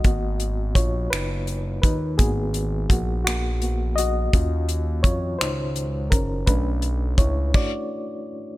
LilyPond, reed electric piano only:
\new Staff \with { instrumentName = "Reed electric piano" } { \time 6/8 \key gis \dorian \tempo 4. = 56 << { dis''4 <eis' cis''>8 <dis' b'>4 <dis' b'>8 | gis'4 <ais fis'>8 <ais fis'>4 <fis' dis''>8~ | <fis' dis''>4 <eis' cis''>8 <dis' bis'>4 <cis' ais'>8 | b'4 <e' cis''>8 <fis' d''>4 r8 | } \\ { <ais b fis'>8 r2 r8 | <ais b fis'>2 <ais b fis'>8 r8 | <dis cis' eis'>4. r4. | <a cis' d'>8 r4 <a d' cis''>8 r4 | } >> }